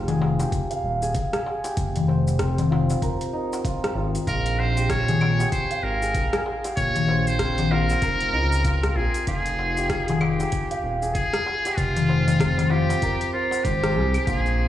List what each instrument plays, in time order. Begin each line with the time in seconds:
Already playing: analog synth bass F1, santur C4 D#4 F4 G4 A#4
0.08 santur G#4, closed hi-hat, darbuka ka, darbuka dum, shaker
0.22 darbuka tek
0.39 santur G4, darbuka tek, shaker
0.52 kick, closed hi-hat, shaker
0.71 santur F5, closed hi-hat, shaker
0.83 analog synth bass D#1
1.02 santur G#4, shaker
1.15 analog synth bass F1, kick, closed hi-hat, shaker
1.33 santur G#4, cross-stick, closed hi-hat, shaker
1.46 darbuka ka
1.64 santur G4, closed hi-hat, darbuka tek, shaker
1.77 analog synth bass F1, kick, closed hi-hat, shaker
1.96 closed hi-hat, darbuka dum, shaker
2.08 santur C5, darbuka ka
2.28 darbuka ka, shaker
2.39 santur C4, kick, cross-stick, closed hi-hat, shaker
2.58 closed hi-hat, darbuka ka, darbuka dum, shaker
2.71 santur F4, darbuka tek
2.90 darbuka tek, shaker
3.02 santur A#4, kick, closed hi-hat, shaker
3.21 closed hi-hat, shaker
3.33 santur D#4
3.53 darbuka tek, shaker
3.65 santur F4, kick, closed hi-hat, shaker
3.84 cross-stick, closed hi-hat, shaker
3.95 analog synth bass G#1, santur F4
4.15 closed hi-hat, shaker
4.27 analog synth bass A#1, santur F4, muted trumpet A#4, kick, closed hi-hat, shaker
4.46 closed hi-hat, shaker
4.59 muted trumpet C5, darbuka ka
4.77 santur G4, shaker
4.90 muted trumpet C#5, kick, cross-stick, closed hi-hat, shaker
5.08 santur G#4, closed hi-hat, darbuka ka, darbuka dum, shaker
5.21 darbuka tek, claves
5.40 santur G4, darbuka tek, shaker
5.52 muted trumpet C5, kick, closed hi-hat, shaker
5.71 santur F5, closed hi-hat, shaker
5.83 analog synth bass G#1, muted trumpet A#4
6.02 santur G#4, shaker
6.14 analog synth bass A#1, kick, closed hi-hat, shaker
6.33 santur G#4, cross-stick, closed hi-hat, shaker
6.46 darbuka ka
6.64 santur G4, closed hi-hat, darbuka tek, shaker
6.77 analog synth bass A#1, muted trumpet C#5, kick, closed hi-hat, shaker
6.96 closed hi-hat, darbuka dum, shaker
7.08 santur C5, darbuka ka
7.27 muted trumpet C5, shaker
7.39 santur C4, kick, cross-stick, closed hi-hat, shaker
7.58 closed hi-hat, darbuka ka, darbuka dum, shaker
7.71 santur F4, muted trumpet A#4, darbuka tek
7.90 darbuka tek, shaker
8.02 analog synth bass F1, santur A#4, kick, closed hi-hat, shaker
8.20 closed hi-hat, shaker
8.33 analog synth bass C#2, santur D#4
8.52 shaker
8.65 santur F4, kick, closed hi-hat, shaker
8.83 cross-stick, closed hi-hat, shaker
8.90 muted trumpet A#4
8.95 analog synth bass A#1, santur F4, muted trumpet G#4
9.14 closed hi-hat, shaker
9.27 analog synth bass F1, santur F4, muted trumpet G#4, kick, closed hi-hat, shaker
9.46 closed hi-hat, shaker
9.59 darbuka ka
9.77 santur G4, shaker
9.90 kick, cross-stick, closed hi-hat, shaker
10.08 santur G#4, closed hi-hat, darbuka ka, darbuka dum, shaker
10.15 muted trumpet G#4
10.21 muted trumpet G4, darbuka tek, claves
10.40 santur G4, darbuka tek, shaker
10.52 kick, closed hi-hat, shaker
10.71 santur F5, closed hi-hat, shaker
10.83 analog synth bass D#1
11.02 santur G#4, shaker
11.15 analog synth bass F1, muted trumpet G#4, kick, closed hi-hat, shaker
11.34 santur G#4, cross-stick, closed hi-hat, shaker
11.46 darbuka ka
11.65 santur G4, closed hi-hat, darbuka tek, shaker
11.77 analog synth bass F1, muted trumpet F4, kick, closed hi-hat, shaker
11.96 closed hi-hat, darbuka dum, shaker
12.09 santur C5, darbuka ka
12.28 closed hi-hat, darbuka tek, darbuka dum, shaker
12.40 santur C4, kick, cross-stick, closed hi-hat, shaker
12.58 closed hi-hat, darbuka ka, darbuka dum, shaker
12.70 santur F4, muted trumpet G4, darbuka tek
12.89 closed hi-hat, darbuka tek, shaker
13.02 santur A#4, kick, closed hi-hat, shaker
13.21 closed hi-hat, shaker
13.33 muted trumpet F4, santur C5
13.51 darbuka tek, shaker
13.64 analog synth bass G#1, muted trumpet G4, santur C5, kick, closed hi-hat, shaker
13.83 santur G4, cross-stick, closed hi-hat, shaker
13.95 analog synth bass C2, santur G#4
14.14 closed hi-hat, claves, shaker
14.26 analog synth bass A#1, santur F4, muted trumpet G4, kick, closed hi-hat, darbuka ka, shaker
14.37 muted trumpet G#4
14.46 shaker